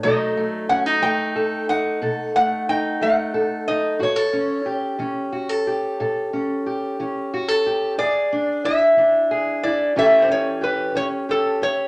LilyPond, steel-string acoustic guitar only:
\new Staff \with { instrumentName = "Steel-string acoustic guitar" } { \time 12/8 \key a \major \tempo 4. = 60 << { <fis a dis' a'>8 a8 cis'16 dis'16 a8 a'8 dis'8 a'8 a8 dis'8 a8 a'8 dis'8 | fis'16 a'16 cis'8 g'8 cis'8 fis'16 a'16 g'8 a'8 cis'8 g'8 cis'8 fis'16 a'16 g'8 | gis'8 d'8 e'8 d'8 gis'8 e'8 <e cis' g' a'>8 cis'8 g'8 cis'8 g'8 g'8 | } \\ { b,4 r8 fis4 r8 b,4 r8 fis4 r8 | a,4 r8 e4 r8 a,4 r8 e4 r8 | e,4 r8 e4 r8 a,4 r8 e4 r8 | } >> }